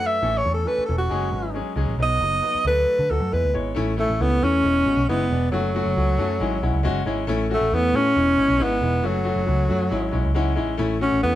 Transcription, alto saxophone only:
0, 0, Header, 1, 2, 480
1, 0, Start_track
1, 0, Key_signature, 3, "major"
1, 0, Tempo, 440205
1, 248, Time_signature, 4, 2, 24, 8
1, 12377, End_track
2, 0, Start_track
2, 0, Title_t, "Alto saxophone"
2, 0, Program_c, 0, 65
2, 67, Note_on_c, 0, 76, 100
2, 407, Note_on_c, 0, 73, 101
2, 423, Note_off_c, 0, 76, 0
2, 568, Note_off_c, 0, 73, 0
2, 588, Note_on_c, 0, 69, 94
2, 737, Note_on_c, 0, 71, 103
2, 753, Note_off_c, 0, 69, 0
2, 893, Note_off_c, 0, 71, 0
2, 929, Note_on_c, 0, 69, 84
2, 1060, Note_off_c, 0, 69, 0
2, 1069, Note_on_c, 0, 66, 88
2, 1739, Note_off_c, 0, 66, 0
2, 2208, Note_on_c, 0, 75, 115
2, 2870, Note_off_c, 0, 75, 0
2, 2911, Note_on_c, 0, 71, 99
2, 3385, Note_on_c, 0, 69, 90
2, 3401, Note_off_c, 0, 71, 0
2, 3634, Note_on_c, 0, 71, 83
2, 3650, Note_off_c, 0, 69, 0
2, 3867, Note_off_c, 0, 71, 0
2, 4352, Note_on_c, 0, 57, 104
2, 4599, Note_on_c, 0, 59, 113
2, 4615, Note_off_c, 0, 57, 0
2, 4838, Note_on_c, 0, 61, 126
2, 4854, Note_off_c, 0, 59, 0
2, 5541, Note_off_c, 0, 61, 0
2, 5547, Note_on_c, 0, 59, 106
2, 5990, Note_off_c, 0, 59, 0
2, 6012, Note_on_c, 0, 54, 96
2, 7651, Note_off_c, 0, 54, 0
2, 8220, Note_on_c, 0, 57, 106
2, 8446, Note_on_c, 0, 59, 118
2, 8463, Note_off_c, 0, 57, 0
2, 8680, Note_on_c, 0, 61, 126
2, 8697, Note_off_c, 0, 59, 0
2, 9406, Note_on_c, 0, 59, 106
2, 9423, Note_off_c, 0, 61, 0
2, 9878, Note_on_c, 0, 54, 100
2, 9894, Note_off_c, 0, 59, 0
2, 11543, Note_off_c, 0, 54, 0
2, 12015, Note_on_c, 0, 61, 103
2, 12236, Note_off_c, 0, 61, 0
2, 12247, Note_on_c, 0, 59, 107
2, 12377, Note_off_c, 0, 59, 0
2, 12377, End_track
0, 0, End_of_file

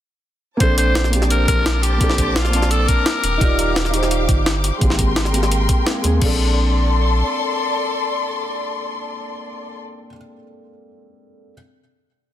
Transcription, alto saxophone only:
0, 0, Header, 1, 2, 480
1, 0, Start_track
1, 0, Key_signature, -2, "major"
1, 0, Tempo, 350877
1, 825, Time_signature, 4, 2, 24, 8
1, 16867, End_track
2, 0, Start_track
2, 0, Title_t, "Alto saxophone"
2, 0, Program_c, 0, 65
2, 832, Note_on_c, 0, 72, 111
2, 1062, Note_off_c, 0, 72, 0
2, 1070, Note_on_c, 0, 72, 113
2, 1514, Note_off_c, 0, 72, 0
2, 1792, Note_on_c, 0, 70, 104
2, 2012, Note_off_c, 0, 70, 0
2, 2026, Note_on_c, 0, 70, 117
2, 2501, Note_on_c, 0, 67, 103
2, 2521, Note_off_c, 0, 70, 0
2, 3225, Note_on_c, 0, 65, 92
2, 3245, Note_off_c, 0, 67, 0
2, 3706, Note_on_c, 0, 69, 101
2, 3726, Note_off_c, 0, 65, 0
2, 3941, Note_on_c, 0, 70, 102
2, 3962, Note_off_c, 0, 69, 0
2, 5383, Note_off_c, 0, 70, 0
2, 16867, End_track
0, 0, End_of_file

